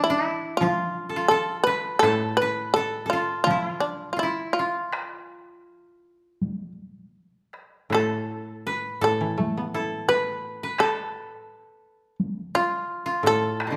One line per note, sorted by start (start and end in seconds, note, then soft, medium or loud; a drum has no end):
0.00 1.32 E3 medium
0.00 2.34 D4 medium
0.00 0.55 E4 medium
0.10 0.68 E4 medium
0.57 2.75 F3 medium
0.57 1.26 F4 medium
0.62 1.16 F4 medium
0.62 taiko high medium
1.09 1.30 A4 soft
1.16 3.13 F4 medium
1.28 1.63 A4 medium
1.28 2.03 A4 medium
1.64 1.99 B4 medium
1.64 2.41 B4 medium
1.68 taiko rim soft
1.99 4.20 A2 medium
1.99 2.35 A4 medium
1.99 taiko rim medium
2.04 2.76 A4 medium
2.37 2.72 B4 medium
2.42 4.19 B4 medium
2.74 3.08 A4 medium
2.74 3.05 A4 medium
3.06 3.43 F4 medium
3.06 4.96 A4 soft
3.13 3.50 F4 medium
3.44 5.65 F3 medium
3.44 3.79 F4 medium
3.44 taiko high medium
3.51 3.66 E4 medium
3.66 4.16 F4 medium
3.80 4.09 D4 medium
4.13 4.19 F4 soft
4.13 4.29 F4 soft
4.19 4.53 E4 medium
4.19 4.65 E4 medium
4.53 6.72 F4 medium
4.59 6.78 F4 medium
4.93 taiko rim medium
6.42 taiko high soft
7.53 taiko rim soft
7.90 9.00 A2 soft
7.90 9.01 A4 medium
7.90 taiko rim soft
7.95 9.00 A4 medium
8.67 10.08 B4 medium
9.01 11.13 A2 soft
9.01 9.74 A4 medium
9.01 10.05 A4 medium
9.21 10.61 E3 soft
9.38 10.78 A3 soft
9.38 taiko high soft
9.57 10.97 B3 soft
9.74 11.14 E4 soft
9.74 10.79 A4 medium
10.08 10.63 B4 medium
10.08 10.75 B4 medium
10.63 12.41 B4 medium
10.79 12.70 A4 medium
10.79 12.15 A4 medium
10.79 taiko rim medium
12.20 taiko high soft
12.55 13.05 F4 medium
12.55 13.20 F4 medium
13.06 13.77 F4 medium
13.23 13.77 A2 medium
13.23 13.77 A4 medium
13.23 taiko rim soft
13.27 13.77 A4 medium
13.60 taiko rim soft
13.67 13.77 B2 soft
13.67 13.77 D3 soft
13.72 13.77 E3 soft